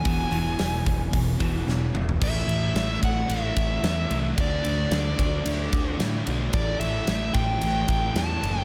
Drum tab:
CC |----------------|x---------------|----------------|----------------|
RD |----------------|--x-x-x-x-x-x-x-|x-x-x-x-x-x-x-x-|x-x-x-x-x-x-x-x-|
HH |o-o-o-o-o-o-----|----------------|----------------|----------------|
SD |----o-------o---|----o-------o---|----o-------o---|----o-------o---|
T2 |--------------o-|----------------|----------------|----------------|
FT |---------------o|----------------|----------------|----------------|
BD |o-----o-o-o-----|o-----o---o-----|o-----o---o-----|o-----o---o-----|